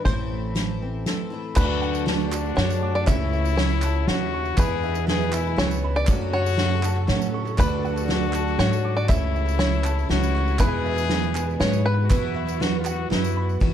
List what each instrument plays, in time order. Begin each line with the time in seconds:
Already playing: steel-string acoustic guitar E3
0.05 upright bass A1, twelve-string acoustic guitar A2 E3 A3 C4 E4, steel-string acoustic guitar A2, five-string banjo C5, kick, closed hi-hat
0.32 steel-string acoustic guitar E4
0.55 twelve-string acoustic guitar E3 A3 C4 E4, snare, closed hi-hat
0.81 steel-string acoustic guitar E3 C4
1.06 twelve-string acoustic guitar E3 A3 C4 E4, steel-string acoustic guitar A4, snare, closed hi-hat
1.30 twelve-string acoustic guitar A3 C4 E4, steel-string acoustic guitar E4
1.56 upright bass D2, felt piano D2 D3 F#3 A3 D4 A4 D5, twelve-string acoustic guitar D3 A3 D4 F#4, string section D3 F#3 A3 F#4, trumpet F#4, five-string banjo B4, upright piano D5, kick, clap, crash, tambourine
1.82 upright piano F#5, ride, tambourine
1.94 clap, tambourine
2.06 twelve-string acoustic guitar D3 A3 D4 F#4, felt piano F#3 A3 D4 A4 D5, upright piano D4, trumpet D4, snare, clap, ride
2.20 tambourine
2.32 upright piano A5, clap, tambourine
2.46 tambourine
2.56 upright bass F#2, twelve-string acoustic guitar D3 A3 D4 F#4, felt piano F#3 A3 D4 A4 F#5, five-string banjo C#5, upright piano F#5, snare, ride
2.70 clap, tambourine
2.83 upright piano D6
2.95 five-string banjo D5, tambourine
3.07 felt piano C#2 C#3 A3 C#4 E4 C#5 E5, upright bass C#2, twelve-string acoustic guitar C#3 E3 A3 C#4 E4, string section C#3 E4, trumpet E4, upright piano C#5, five-string banjo E5, kick, clap, ride, tambourine
3.33 upright piano E5, tambourine
3.45 clap, tambourine
3.57 twelve-string acoustic guitar E3 A3 C#4 E4, felt piano A3 C#4 E4 C#5 F#5, five-string banjo C#5, upright piano C#5, snare, clap, ride
3.70 tambourine
3.82 upright piano A5, clap, tambourine
3.95 tambourine
4.07 upright bass D#2, felt piano A3 C#4 E4 C#5 F#5, twelve-string acoustic guitar A3 C#4 E4, trumpet F#4, upright piano C#5, snare, ride
4.20 clap
4.33 upright piano C#6
4.45 tambourine
4.56 felt piano E2 E3 G#3 B3 E4 B4 E5, twelve-string acoustic guitar E2 B2 E3 G#3 B3 E4, upright bass E2, string section B2 G#3 E4, trumpet G#4, upright piano B4, five-string banjo B4, kick, clap, ride, tambourine
4.83 upright piano E5, ride, tambourine
4.95 clap, tambourine
5.07 twelve-string acoustic guitar E3 G#3 B3 E4, felt piano G#3 B3 E4 B4 E5, trumpet G#4, upright piano B4, snare, clap, ride
5.21 tambourine
5.32 twelve-string acoustic guitar E3 G#3 B3 E4, trumpet E4, upright piano G#5, clap, tambourine
5.47 tambourine
5.56 upright bass C#2, twelve-string acoustic guitar E3 G#3 B3 E4, felt piano G#3 B3 E4 B4 E5, upright piano B4, five-string banjo C#5, snare, ride
5.70 clap, tambourine
5.84 upright piano B5
5.96 five-string banjo D5, tambourine
6.07 felt piano F#1 F#2 F#3 A3 C#4 A4 C#5, twelve-string acoustic guitar F#2 C#3 F#3 A3 C#4 F#4, upright bass F#2, string section C#3 F#3 F#4 A4, trumpet F#4, upright piano C#5, kick, clap, ride, tambourine
6.21 tambourine
6.33 five-string banjo C#5, upright piano F#5, tambourine
6.46 tambourine
6.57 twelve-string acoustic guitar F#3 A3 C#4 F#4, felt piano F#3 A3 C#4 A4 E5, upright piano C#5, snare, ride
6.70 clap
6.82 twelve-string acoustic guitar F#3 A3 C#4 F#4, upright piano A5, clap, tambourine
6.95 clap
7.07 upright bass A2, felt piano F#3 A3 C#4 A4 C#5, twelve-string acoustic guitar F#3 A3 C#4 F#4, upright piano C#5, snare, clap, ride
7.22 tambourine
7.34 upright piano C#6
7.46 clap, tambourine
7.57 felt piano D2 D3 F#3 A3 D4 A4 D5, upright bass D2, twelve-string acoustic guitar D3 A3 D4 F#4, string section D3 F#3 F#4, trumpet F#4, five-string banjo B4, upright piano D5, kick, clap, ride, tambourine
7.83 upright piano F#5, ride, tambourine
7.96 clap, tambourine
8.07 twelve-string acoustic guitar D3 A3 D4, felt piano F#3 A3 D4 A4 D5, upright piano D4, snare, clap, ride
8.12 twelve-string acoustic guitar F#4
8.23 tambourine
8.33 upright piano A5, clap, tambourine
8.47 tambourine
8.57 upright bass G#2, twelve-string acoustic guitar D3 D4, felt piano F#3 D4 A4 F#5, five-string banjo C#5, upright piano F#5, snare, ride
8.62 twelve-string acoustic guitar F#4
8.72 clap, tambourine
8.85 upright piano D6
8.97 five-string banjo D5, tambourine
9.09 felt piano C#2 C#3 A3 C#4 E4 C#5 E5, upright bass C#2, twelve-string acoustic guitar C#3 E3 A3 C#4 E4, string section C#3 E3 E4, trumpet E4, upright piano C#5, five-string banjo E5, kick, clap, ride, tambourine
9.35 upright piano E5, tambourine
9.46 clap, tambourine
9.57 twelve-string acoustic guitar E3 A3 C#4, felt piano A3 C#4 E4 E5, five-string banjo C#5, upright piano C#5, snare, clap, ride
9.63 twelve-string acoustic guitar E4
9.74 tambourine
9.84 twelve-string acoustic guitar C#4 E4, upright piano A5, clap, tambourine
9.88 twelve-string acoustic guitar A3
9.99 tambourine
10.09 upright bass C#2, twelve-string acoustic guitar E3 A3 C#4 E4, felt piano A3 C#4 E4 C#5 E5, trumpet F#4, upright piano C#5, snare, ride
10.22 clap, tambourine
10.34 twelve-string acoustic guitar A3 C#4 E4, upright piano C#6
10.48 tambourine
10.59 felt piano E2 E3 G#3 B3 E4 E5, twelve-string acoustic guitar E2 B2 E3 G#3 B3 G#4, string section B2 G#3, trumpet G#4, upright piano B4, five-string banjo B4, kick, clap, tambourine
10.84 upright piano E5, ride, tambourine
10.97 clap, tambourine
11.09 twelve-string acoustic guitar E3 G#3 B3, felt piano G#3 B3 E4 B4 E5, upright piano B4, snare, clap, ride
11.13 twelve-string acoustic guitar G#4
11.24 tambourine
11.35 upright piano G#5, clap, tambourine
11.50 tambourine
11.60 upright bass G#2, twelve-string acoustic guitar E3 G#3 B3 G#4, felt piano G#3 B3 E4 B4 E5, upright piano B4, five-string banjo C#5, snare, ride
11.72 clap, tambourine
11.85 five-string banjo B4, upright piano B5
12.04 trumpet F#4
12.09 twelve-string acoustic guitar E2 B2 E3 B3 E4 F#4, upright bass E2, felt piano E2 F#3 B3 E4 B4 E5, string section E3 F#3 B3 F#4, trumpet E4, upright piano B4, kick, clap, ride, tambourine
12.35 upright piano E5, clap
12.47 clap, tambourine
12.60 twelve-string acoustic guitar E3 B3 E4 F#4, felt piano F#3 B3 E4 B4 E5, trumpet F#4, upright piano B4, snare, ride
12.80 trumpet F4
12.85 trumpet F#4, upright piano F#5, clap, tambourine
13.09 upright bass F#2, twelve-string acoustic guitar E3 B3 E4 F#4, felt piano F#3 B3 E4 B4 E5, trumpet E4, upright piano B4, snare, clap, ride
13.24 tambourine
13.36 upright piano B5
13.49 tambourine
13.60 twelve-string acoustic guitar E2 B2 E3 B3 E4 F#4, steel-string acoustic guitar E2 F#4, upright bass E2, kick, ride